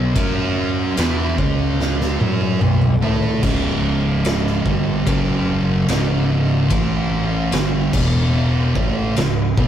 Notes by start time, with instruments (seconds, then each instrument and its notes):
Already playing: fingered electric bass B1, distorted electric guitar B2 F#3 B3
0.15 fingered electric bass F#2, distorted electric guitar F#3 C#4 F#4, kick, ride bell
0.97 fingered electric bass E2, distorted electric guitar E3 B3 E4, snare, ride bell
1.38 fingered electric bass C#2, distorted electric guitar C#3 G#3 C#4, kick
1.80 snare
2.01 snare
2.20 fingered electric bass F#2, distorted electric guitar F#3 C#4 F#4, high tom
2.41 high tom
2.61 fingered electric bass B1, distorted electric guitar B2 F#3, mid tom
2.82 mid tom
3.02 fingered electric bass A2, distorted electric guitar A3 E4 A4, floor tom
3.23 floor tom
3.42 fingered electric bass C#1, distorted electric guitar C#2 G#2 C#3, kick, crash
4.25 snare, ride bell
4.47 snare
4.65 fingered electric bass G1, distorted electric guitar G2 D3 G3, kick
5.06 fingered electric bass F#1, distorted electric guitar F#2 C#3 F#3, kick, ride bell
5.88 fingered electric bass C#1, distorted electric guitar C#2 G#2 C#3, snare, ride bell
6.70 fingered electric bass A1, distorted electric guitar A2 E3 A3, kick, ride bell
7.51 fingered electric bass G1, distorted electric guitar G2 D3 G3, snare, ride bell
7.93 fingered electric bass E1, distorted electric guitar E2 B2 E3, kick, crash
8.74 fingered electric bass A1, distorted electric guitar A2 E3 A3, kick
9.16 fingered electric bass C#1, distorted electric guitar C#2 G#2, snare, ride bell
9.57 fingered electric bass B1, distorted electric guitar B2 F#3 B3, kick